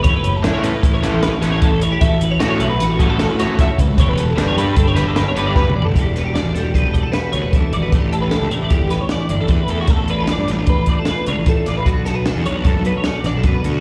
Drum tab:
HH |x--x--x--x--x--x--x--x--x--x--|x--x--x--x--x--x--x--x--x--x--|x--x--x--x--x--x--x--x--------|x--x--x--x--x--x--x--x--x--x--|
SD |------o--o-----o--o--o--------|------o-----o-----o--o--o-----|------o--------o--o-----o-----|---o--o--o--------o-----------|
T2 |------------------------------|------------------------------|--------------------------o---|------------------------------|
FT |------------------------------|------------------------------|----------------------------o-|------------------------------|
BD |o-----------o-----------o-----|o--------------o--------o--o--|o-----------o-----------o-----|o-----------o--o--------o-----|

HH |x--x--x--x--x--x--x--x--x--x--|x--x--x--x--x--x--x--x--x--x--|x--x--x--x--x--x--x--x--x--x--|
SD |------o--------o--o-----------|------o--o--------o--------o--|---o--o-----------o--o--------|
T2 |------------------------------|------------------------------|------------------------------|
FT |------------------------------|------------------------------|------------------------------|
BD |o-----------o-----------o-----|o-----------o--o--------o-----|o-----------o-----------o-----|